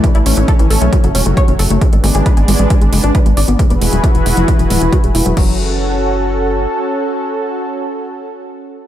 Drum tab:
CC |----------------|----------------|----------------|x---------------|
HH |xxoxxxoxxxoxxxox|xxoxxxoxxxoxxxox|xxoxxxoxxxoxxxox|----------------|
BD |o---o---o---o---|o---o---o---o---|o---o---o---o---|o---------------|

CC |----------------|
HH |----------------|
BD |----------------|